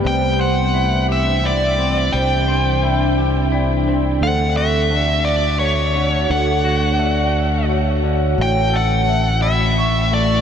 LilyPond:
<<
  \new Staff \with { instrumentName = "Lead electric guitar" } { \time 6/8 \key d \major \tempo 4. = 58 g''8 fis''4 e''8 d''4 | g''2 r4 | fis''8 e''4 d''8 cis''4 | fis''2 r4 |
g''8 fis''4 e''4 d''8 | }
  \new Staff \with { instrumentName = "Vibraphone" } { \time 6/8 \key d \major c''4 e''4 d''4 | c''4 e''4 d''4 | a'4 d''4 cis''4 | a'4 d''4 cis''4 |
cis''4 e''4 cis'''4 | }
  \new Staff \with { instrumentName = "Ambient pad" } { \time 6/8 \key d \major << { <e d'>2.~ | <e d'>2. | <d fis'>2.~ | <d fis'>2. |
<a e'>2. | } \\ { c'2. | c'2. | r2. | r2. |
r2. | } >> }
  \new Staff \with { instrumentName = "Clean electric guitar" } { \time 6/8 \key d \major c8 c''8 e'8 g'8 e'8 c'8 | c8 c''8 e'8 g'8 e'8 c'8 | d,8 fis'8 a4 a8 d8 | d,8 fis'8 a4 a8 d8 |
a,8 a'4 e'4 a8 | }
  \new Staff \with { instrumentName = "Fingered electric bass" } { \clef bass \time 6/8 \key d \major c,2. | c,2. | d,2. | d,2. |
a,,2. | }
>>